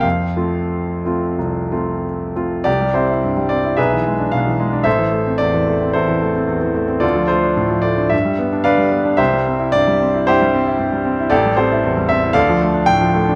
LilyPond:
<<
  \new Staff \with { instrumentName = "Grand piano" } { \time 4/4 \key f \major \tempo 4 = 111 f''2. r4 | \key c \major <g' d''>8 <e' g' c''>4 d''8 <gis' b' e''>4 f''4 | <a' c'' e''>4 d''4 <e' a' c''>2 | <f' a' d''>8 <f' a' c''>4 d''8 e''4 <b' d'' f''>4 |
<g' c'' e''>4 d''4 <e' g' c''>2 | <g' a' d''>8 <g' a' c''>4 e''8 <a' d'' f''>4 g''4 | }
  \new Staff \with { instrumentName = "Grand piano" } { \time 4/4 \key f \major f,8 <a c' f'>4 <a c' f'>8 c,8 <a c' f'>4 <a c' f'>8 | \key c \major c,16 g16 c'16 e'16 g,16 g16 c'16 e'16 b,,16 e16 gis16 d'16 b,16 e16 gis16 d'16 | a,,16 e16 a16 c'16 e,16 e16 a16 c'16 e,16 e16 a16 c'16 e,16 e16 a16 c'16 | d,16 f16 a16 d'16 a,16 f16 a16 d'16 g,16 g16 b16 d'16 d16 g16 b16 d'16 |
c,16 g16 c'16 e'16 g,16 g16 c'16 e'16 g,16 g16 c'16 e'16 g,16 g16 c'16 e'16 | a,,16 g16 c'16 e'16 e,16 g16 c'16 e'16 d,16 f16 a16 d'16 a,16 f16 a16 d'16 | }
>>